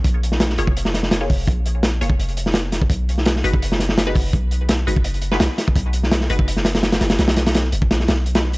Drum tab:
HH |x-x-x-x-x-x-x-o-|x-x-x-x-xxx-x-x-|x-x-x-x-x-x-x-o-|x-x-x-x-xxx-x-x-|
SD |---ooo---oooo---|----o------oo-o-|---ooo---oooo---|----o------oo-o-|
BD |o------o------o-|o------o-------o|o------o------o-|o------o-------o|

HH |x-x-x-x-x-xxxxxx|xxxxx-x-x-x-xx-x|
SD |---ooo---ooooooo|ooooo---ooo--o--|
BD |o------o--------|-------o--------|